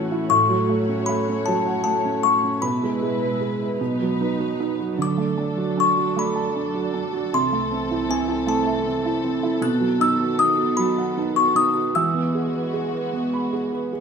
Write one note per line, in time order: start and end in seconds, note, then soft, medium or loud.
0.00 0.26 A2 medium
0.00 0.32 E3 medium
0.00 2.59 A3 medium
0.00 0.32 C#4 soft
0.00 0.12 E4 medium
0.00 2.59 F#4 medium
0.00 0.27 C#5 medium
0.00 0.28 F#5 soft
0.12 0.30 E4 soft
0.29 2.59 A2 medium
0.29 2.60 C#5 medium
0.29 1.09 C#6 medium
0.50 1.46 F#3 medium
0.69 1.07 A3 soft
0.89 1.27 C#4 soft
1.06 1.84 A3 medium
1.06 1.24 B5 medium
1.28 2.03 C#4 soft
1.46 2.60 F#3 medium
1.46 1.83 A5 medium
1.66 2.60 F#5 soft
1.84 2.23 A3 soft
1.84 2.24 A5 medium
2.05 2.42 C#4 soft
2.23 2.62 A3 soft
2.23 2.64 C#6 medium
2.44 2.62 C#4 soft
2.61 3.79 B2 medium
2.61 3.77 B2 medium
2.61 3.79 G#3 medium
2.61 3.79 E4 medium
2.61 3.78 B4 medium
2.61 4.56 B5 medium
2.83 3.78 G#3 soft
3.02 3.40 G#4 soft
3.21 3.60 B4 soft
3.41 3.79 G#4 soft
3.62 3.81 B4 soft
3.79 4.96 B2 medium
3.79 7.30 F#3 medium
3.79 4.97 D#4 medium
3.79 4.97 B4 medium
4.02 4.97 F#3 soft
4.21 4.59 D#4 soft
4.40 4.78 F#4 soft
4.60 4.98 D#4 soft
4.80 4.99 F#4 soft
4.97 7.29 D3 medium
4.97 7.31 D4 medium
4.97 11.91 A4 medium
5.02 5.82 D6 medium
5.18 6.15 A3 soft
5.38 5.76 D4 soft
5.58 5.96 F#4 soft
5.77 6.54 D4 medium
5.77 6.20 C#6 medium
5.97 6.73 F#4 soft
6.17 7.30 A3 medium
6.17 7.38 B5 medium
6.35 7.30 A5 soft
6.56 6.92 D4 soft
6.75 7.12 F#4 medium
6.94 7.32 D4 soft
7.13 7.33 F#4 soft
7.33 9.61 C2 medium
7.33 9.59 C3 medium
7.33 9.61 E3 medium
7.33 9.61 C4 medium
7.33 8.07 C6 medium
7.53 8.45 A3 soft
7.72 8.08 C4 soft
7.91 8.27 E4 soft
8.09 8.85 C4 soft
8.09 8.28 G#5 medium
8.28 9.04 E4 soft
8.47 9.59 A3 medium
8.47 9.31 A5 medium
8.66 9.60 E5 soft
8.86 9.23 C4 soft
9.06 9.42 E4 medium
9.24 9.62 C4 soft
9.43 9.62 E4 medium
9.61 11.91 B2 medium
9.61 11.94 D#3 medium
9.61 11.94 B3 medium
9.61 9.80 F#6 medium
9.80 10.77 F#3 soft
10.00 10.37 D#4 medium
10.00 10.41 E6 medium
10.19 10.56 F#4 soft
10.39 11.16 D#4 medium
10.39 10.80 D#6 medium
10.58 11.34 F#4 soft
10.77 11.92 F#3 medium
10.77 11.38 B5 medium
10.98 11.93 F#5 medium
11.18 11.54 D#4 soft
11.36 11.73 F#4 soft
11.36 11.57 C#6 medium
11.55 11.94 D#4 soft
11.55 11.93 D#6 medium
11.75 11.95 F#4 soft
11.94 14.00 E3 medium
11.94 14.00 G#3 medium
11.94 14.00 F#4 medium
11.94 13.50 E6 medium
12.14 13.12 B3 medium
12.35 12.72 G#4 soft
12.53 12.92 B4 soft
12.73 13.51 G#4 soft
12.93 13.71 B4 soft
13.13 14.00 B3 medium
13.33 14.00 B5 soft
13.53 13.91 G#4 soft
13.73 14.00 B4 medium
13.93 14.00 G#4 soft